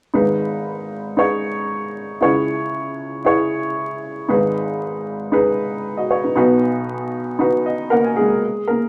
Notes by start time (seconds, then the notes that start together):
0.14 G#1 G#2 D#4 G#4 B4
1.17 D#4 G#4 C#5
2.21 C#2 C#3 E4 G#4 C#5
3.25 E4 G#4 C#5
4.28 G#1 G#2 D#4 G#4 B4
5.32 D#4 G#4 B4
5.97 F#4 D#5
6.11 C#5
6.24 D#4 B4
6.35 B1 B2 D#4 F#4 B4
7.39 D#4 F#4 B4
7.66 D#5
7.90 A#3 A#4 F#5
8.04 G#5
8.16 G#3 G#4
8.68 A#3 A#4